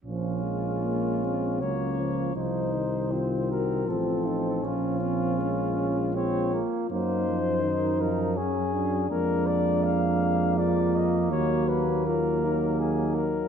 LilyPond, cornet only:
\new Staff \with { instrumentName = "Cornet" } { \time 3/4 \key bes \minor \tempo 4 = 80 f'2 des''4 | c''4. bes'8 a'4 | f'2 des''8 r8 | c''4. bes'8 aes'4 |
\key ees \minor bes'8 d''8 f''4 d''8 ees''8 | des''8 ces''8 bes'4 aes'8 bes'8 | }